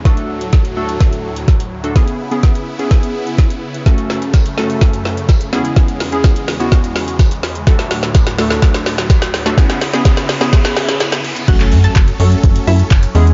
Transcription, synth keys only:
\new Staff \with { instrumentName = "Synth keys" } { \time 4/4 \key fis \minor \tempo 4 = 126 <a d' fis' a'>4 r8 <a d' fis' a'>4~ <a d' fis' a'>16 r4 <a d' fis' a'>16 | <b e' gis'>8 r16 <b cis' e' gis'>8 r8 <b cis' e' gis'>4~ <b cis' e' gis'>16 r4 | <a cis' fis' a'>4 r8 <a cis' fis' a'>4~ <a cis' fis' a'>16 r8. <b cis' e' gis'>8~ | <b cis' e' gis'>8 r16 <b cis' e' gis'>8 r8 <b cis' e' fis'>4~ <b cis' e' fis'>16 r4 |
<a d' fis' a'>4 r8 <a d' fis' a'>4~ <a d' fis' a'>16 r4 <a d' fis' a'>16 | <b cis' e' gis'>8 r16 <b cis' e' gis'>8 r8 <b cis' e' gis'>4~ <b cis' e' gis'>16 r4 | <fis a cis' fis' a'>16 <fis a cis' fis' a'>8. r8 <fis a cis' fis' a'>4~ <fis a cis' fis' a'>16 r8. <gis b cis' e' gis'>8 | }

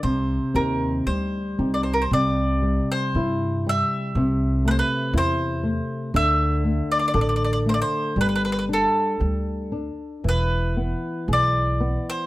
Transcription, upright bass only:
\new Staff \with { instrumentName = "Upright bass" } { \clef bass \time 2/4 \key c \minor \tempo 4 = 58 c,8 ees,8 d,8 c,8 | \key c \major c,4 g,4 | c,4 e,4 | d,4 a,,4 |
g,,4 d,4 | e,,4 b,,4 | }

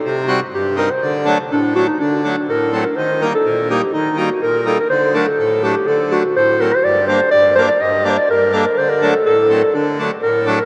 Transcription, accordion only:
\new Staff \with { instrumentName = "Accordion" } { \clef bass \time 2/4 \tempo 4 = 124 << { r8 <g c' fis'>16 r8. <g c' ees'>16 r16 | r8 <fis a d'>16 r8. <fis a d'>16 r16 | r8 <fis a d'>16 r8. <fis a c'>16 r16 | r8 <g bes ees'>16 r8. <g bes ees'>16 r16 |
r8 <g bes ees'>16 r8. <g bes ees'>16 r16 | r8 <fis a d'>16 r8. <fis a d'>16 r16 | r8 <fis a d'>16 r8. <fis a c'>16 r16 | r8 <g bes d'>16 r8. <g bes d'>16 r16 |
r8 <g bes d'>16 r8. <g bes d'>16 r16 | r8 <fis a d'>16 r8. <fis a c'>16 r16 | r8 <fis a d'>16 r8. <fis a d'>16 r16 | } \\ { c4 g,4 | d4 a,4 | d4 a,4 | ees4 bes,4 |
ees4 bes,4 | d4 a,4 | d4 a,4 | g,4 g,4 |
g,4 g,4 | d4 a,4 | d4 a,4 | } >> }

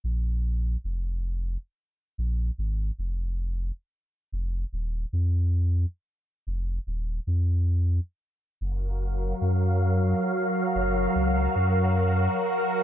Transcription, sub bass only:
\new Staff \with { instrumentName = "Sub bass" } { \clef bass \time 4/4 \key ees \dorian \tempo 4 = 112 bes,,4~ bes,,16 r16 f,,4~ f,,16 r4 r16 | bes,,8 r16 aes,,8 r16 f,,4~ f,,16 r4 r16 | f,,8 r16 ees,,8 r16 f,4~ f,16 r4 r16 | f,,8 r16 ees,,8 r16 f,4~ f,16 r4 r16 |
ges,,4~ ges,,16 r16 ges,4~ ges,16 r4 r16 | ges,,8 r16 des,8 r16 ges,4~ ges,16 r4 r16 | }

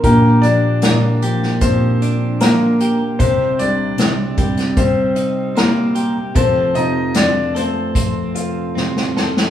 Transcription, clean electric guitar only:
\new Staff \with { instrumentName = "Clean electric guitar" } { \time 4/4 \key c \dorian \tempo 4 = 76 <bes, g'>8 d'8 bes8 g'8 f8 d'8 bes8 g'8 | <c g'>4 c'8 g'8 g8 ees'8 c'8 g'8 | <f a'>8 f'8 c'8 a'8 c'8 f'8 c'8 a'8 | }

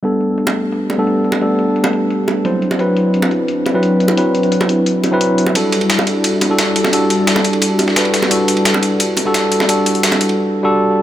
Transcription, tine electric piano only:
\new Staff \with { instrumentName = "Tine electric piano" } { \time 4/4 \key e \minor \tempo 4 = 174 <g b d' a'>2~ <g b d' a'>8. <g b d' a'>16 r4 | <g b d' a'>16 r2 r8. <fis c' e' c''>4 | <fis c' e' b'>2~ <fis c' e' b'>8. <fis c' e' b'>16 r4 | <fis c' e' b'>16 r2 r8 <fis c' e' b'>4~ <fis c' e' b'>16 |
<g d' fis' a'>2~ <g d' fis' a'>8. <g d' fis' a'>16 r4 | <g d' fis' a'>16 r2 r8. <g d' fis' b'>4 | <g d' fis' a'>2~ <g d' fis' a'>8. <g d' fis' a'>16 r4 | <g d' fis' a'>16 r2 r8 <g d' fis' a'>4~ <g d' fis' a'>16 | }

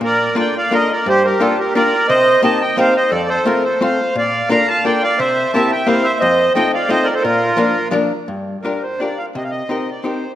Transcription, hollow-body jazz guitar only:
\new Staff \with { instrumentName = "Hollow-body jazz guitar" } { \time 3/4 \key bes \major \tempo 4 = 174 bes,4 <bes d' f' a' bes'>8 r8 <bes d' f' a' bes'>8 r8 | g,4 <bes d' f' g' bes'>8 r8 <bes d' f' g' bes'>8 r8 | c4 <bes c' ees' g' bes'>8 r8 <bes c' ees' g' bes'>8 r8 | f,4 <a c' f' a' c''>8 r8 <a c' f' a' c''>8 r8 |
bes,4 <bes d' f' a' bes'>8 r8 <bes d' f' a' bes'>8 r8 | c4 <bes c' e' g' bes'>8 r8 <bes c' e' g' bes'>8 r8 | f,4 <a c' ees' f' a'>8 r8 <a c' ees' f' a'>8 r8 | bes,4 <f bes d' f' bes'>8 r8 <f bes d' f' bes'>8 r8 |
\key g \minor g,4 <d' f' g' bes'>8 r8 <d' f' g' bes'>8 r8 | c4 <c' ees' g' bes'>8 r8 <c' ees' g' bes'>8 r8 | }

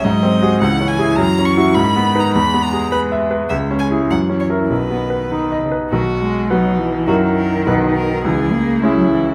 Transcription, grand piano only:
\new Staff \with { instrumentName = "Grand piano" } { \time 2/4 \key b \major \tempo 4 = 103 \tuplet 3/2 { gis,8 bis8 <fis' gis'>8 cis,8 cis'8 <e' gis'>8 } | \tuplet 3/2 { fis,8 cis'8 <e' fis'>8 gis,8 b8 <dis' b'>8 } | \tuplet 3/2 { e,8 b8 gis'8 b'8 e''8 b'8 } | \tuplet 3/2 { cis,8 cis'8 <e' gis'>8 fis,8 cis'8 <e' ais'>8 } |
\tuplet 3/2 { b,,8 b8 b'8 dis'8 dis''8 b'8 } | b,,4 <b fis' b'>4 | <fis, e' fis' ais'>4 <b,, dis' fis' b'>4 | cis,4 <cis' e' gis'>4 | }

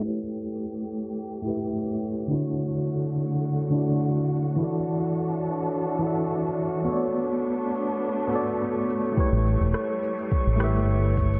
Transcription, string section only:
\new Staff \with { instrumentName = "String section" } { \time 4/4 \key a \mixolydian \tempo 4 = 105 <a g'>1 | <d a fis'>1 | <e d' a'>1 | <a b d'>1 |
g1 | }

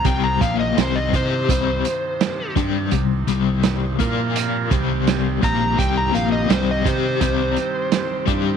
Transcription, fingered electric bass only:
\new Staff \with { instrumentName = "Fingered electric bass" } { \clef bass \time 4/4 \key c \minor \tempo 4 = 84 c,8 bes,,8 c,8 c8 c,8 r4 g,8 | c,8 c,4 bes,4 c,4 bes,,8 | c,8 bes,,8 c,8 c8 c,8 r4 g,8 | }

